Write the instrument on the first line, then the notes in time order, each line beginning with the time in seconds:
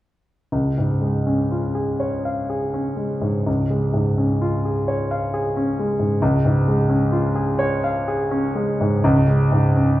grand piano
0.52 C#2
0.78 G#2
1.02 G#3
1.27 C#4
1.51 F4
1.75 G#4
2.00 C#5
2.25 F5
2.50 G#4
2.74 C#4
2.96 G#3
3.22 G#2
3.47 C#2
3.70 G#3
3.94 G#2
4.18 C#4
4.42 F4
4.65 G#4
4.88 C#5
5.11 F5
5.34 G#4
5.57 C#4
5.79 G#3
6.00 G#2
6.22 C#2
6.45 G#2
6.68 G#3
6.89 C#4
7.12 F4
7.35 G#4
7.59 C#5
7.84 F5
8.08 G#4
8.31 C#4
8.55 G#3
8.81 G#2
9.04 C#2
9.27 G#3
9.52 G#2
9.76 C#4